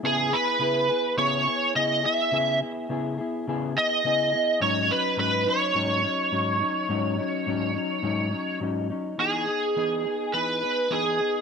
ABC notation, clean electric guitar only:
X:1
M:4/4
L:1/8
Q:"Swing 16ths" 1/4=105
K:E
V:1 name="Clean electric guitar"
[C,B,EG] [B,EG] [C,B,EG] [B,EG] [C,B,EG] [B,EG] [C,B,EG] [B,EG] | [C,B,EG] [B,EG] [C,B,EG] [B,EG] [C,B,EG] [B,EG] [C,B,EG] [B,EG] | [G,,F,CD] [F,CD] [G,,F,CD] [F,CD] [G,,F,CD] [F,CD] [G,,F,CD] [F,CD] | [G,,F,CD] [F,CD] [G,,F,CD] [F,CD] [G,,F,CD] [F,CD] [G,,F,CD] [F,CD] |
[E,B,DG] [B,DG] [E,B,DG] [B,DG] [E,B,DG] [B,DG] [E,B,DG] [B,DG] |]